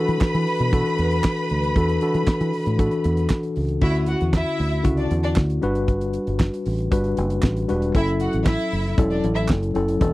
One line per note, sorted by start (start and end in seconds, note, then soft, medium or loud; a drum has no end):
0.00 0.72 E3 medium
0.00 0.72 D4 medium
0.00 0.73 F#4 medium
0.00 0.74 A4 loud
0.00 3.27 B4 loud
0.00 3.26 B5 loud
0.08 0.19 E3 medium
0.08 closed hi-hat soft
0.21 kick loud
0.21 snare loud
0.21 clap medium
0.34 0.45 E3 medium
0.34 closed hi-hat soft
0.47 open hi-hat medium
0.60 0.82 B2 medium
0.60 closed hi-hat soft
0.72 1.42 E3 medium
0.72 1.42 D4 medium
0.72 1.42 F#4 medium
0.72 1.43 A4 medium
0.72 kick loud
0.72 closed hi-hat medium
0.86 closed hi-hat soft
0.98 1.20 E2 medium
0.98 closed hi-hat medium
1.11 closed hi-hat medium
1.24 kick loud
1.24 snare loud
1.24 clap loud
1.37 closed hi-hat soft
1.50 1.72 D2 medium
1.50 closed hi-hat soft
1.63 closed hi-hat medium
1.76 1.97 E2 medium
1.76 1.93 E3 medium
1.76 1.93 D4 medium
1.76 1.94 F#4 medium
1.76 1.94 A4 medium
1.76 kick loud
1.76 closed hi-hat medium
1.89 closed hi-hat soft
2.01 2.53 E3 medium
2.01 2.54 D4 medium
2.01 2.54 F#4 medium
2.01 2.54 A4 medium
2.01 closed hi-hat medium
2.14 2.25 E3 medium
2.14 closed hi-hat soft
2.27 kick loud
2.27 snare loud
2.27 clap medium
2.40 2.51 E3 medium
2.40 closed hi-hat soft
2.53 open hi-hat medium
2.66 2.88 A2 medium
2.66 closed hi-hat soft
2.77 3.48 E3 medium
2.77 3.48 D4 medium
2.77 3.48 F#4 medium
2.77 3.49 A4 medium
2.77 kick loud
2.77 closed hi-hat medium
2.91 closed hi-hat soft
3.04 3.26 E2 medium
3.04 closed hi-hat medium
3.17 closed hi-hat medium
3.29 kick loud
3.29 snare loud
3.29 clap loud
3.43 closed hi-hat soft
3.56 3.78 C#2 medium
3.56 open hi-hat medium
3.69 closed hi-hat medium
3.81 4.14 D2 medium
3.81 4.51 D3 medium
3.81 4.51 C#4 medium
3.81 4.51 E4 medium
3.81 3.92 E4 loud
3.81 4.52 F#4 medium
3.81 3.92 E5 loud
3.81 kick medium
3.81 crash medium
3.94 closed hi-hat soft
4.06 4.18 F#4 medium
4.06 4.18 F#5 medium
4.06 closed hi-hat medium
4.21 4.43 E2 medium
4.21 closed hi-hat soft
4.33 4.83 E4 loud
4.33 4.83 E5 loud
4.33 kick loud
4.33 snare medium
4.33 clap medium
4.46 closed hi-hat soft
4.59 4.81 D2 medium
4.59 open hi-hat medium
4.71 closed hi-hat soft
4.83 5.07 C#2 medium
4.83 5.36 D3 medium
4.83 5.36 C#4 medium
4.83 5.37 E4 medium
4.83 5.37 F#4 medium
4.83 kick loud
4.83 closed hi-hat medium
4.97 5.08 D4 medium
4.97 5.08 D5 medium
4.97 closed hi-hat soft
5.11 5.32 E2 medium
5.11 closed hi-hat medium
5.23 5.34 D4 medium
5.23 5.34 D5 medium
5.23 closed hi-hat soft
5.35 5.58 D2 medium
5.35 kick loud
5.35 snare loud
5.35 clap medium
5.50 closed hi-hat soft
5.61 6.17 G1 medium
5.61 6.44 G3 medium
5.61 6.45 D4 medium
5.61 6.45 F#4 medium
5.61 6.45 B4 loud
5.61 closed hi-hat soft
5.75 closed hi-hat medium
5.88 kick medium
5.88 closed hi-hat medium
6.01 closed hi-hat soft
6.13 closed hi-hat medium
6.27 6.49 G1 medium
6.27 closed hi-hat soft
6.39 kick loud
6.39 snare loud
6.39 clap medium
6.54 closed hi-hat medium
6.66 6.88 A1 medium
6.66 open hi-hat medium
6.78 closed hi-hat soft
6.91 7.13 G1 medium
6.91 7.43 G3 medium
6.91 7.44 D4 medium
6.91 7.44 F#4 medium
6.91 7.44 B4 medium
6.91 kick loud
6.91 closed hi-hat medium
7.04 closed hi-hat soft
7.17 7.39 F#1 medium
7.17 closed hi-hat medium
7.30 closed hi-hat medium
7.42 7.65 A1 loud
7.42 kick loud
7.42 snare loud
7.42 clap medium
7.56 closed hi-hat soft
7.68 7.91 E1 medium
7.68 7.86 G3 medium
7.68 7.86 D4 medium
7.68 7.86 F#4 medium
7.68 7.87 B4 medium
7.68 closed hi-hat medium
7.82 closed hi-hat medium
7.94 8.27 F#1 medium
7.94 8.64 F#3 medium
7.94 8.64 C#4 medium
7.94 8.64 E4 medium
7.94 8.05 E4 loud
7.94 8.65 A4 medium
7.94 8.06 E5 loud
7.94 kick loud
7.94 closed hi-hat medium
8.07 closed hi-hat soft
8.20 8.30 F#4 medium
8.20 8.31 F#5 medium
8.20 closed hi-hat medium
8.33 8.55 A1 medium
8.33 closed hi-hat soft
8.45 8.94 E4 loud
8.45 8.94 E5 loud
8.45 kick loud
8.45 snare loud
8.45 clap medium
8.59 closed hi-hat medium
8.72 8.94 F#1 medium
8.72 open hi-hat medium
8.85 snare soft
8.85 closed hi-hat soft
8.97 9.19 E1 medium
8.97 9.50 F#3 medium
8.97 9.50 C#4 medium
8.97 9.50 E4 medium
8.97 9.50 A4 medium
8.97 kick loud
8.97 closed hi-hat medium
9.10 9.21 D4 medium
9.10 9.20 D5 medium
9.10 closed hi-hat soft
9.24 9.45 A1 loud
9.24 closed hi-hat medium
9.34 9.45 E4 medium
9.34 9.46 E5 medium
9.34 closed hi-hat medium
9.48 9.71 F#1 loud
9.48 kick loud
9.48 snare loud
9.48 clap loud
9.63 closed hi-hat soft
9.74 9.97 F#1 medium
9.74 9.92 F#3 medium
9.74 9.92 C#4 medium
9.74 9.93 E4 medium
9.74 9.93 A4 medium
9.74 closed hi-hat medium
9.88 closed hi-hat medium
10.00 10.13 E1 medium
10.00 10.13 E3 medium
10.00 10.13 B3 medium
10.00 10.13 D4 medium
10.00 10.13 A4 loud
10.00 kick loud
10.00 closed hi-hat medium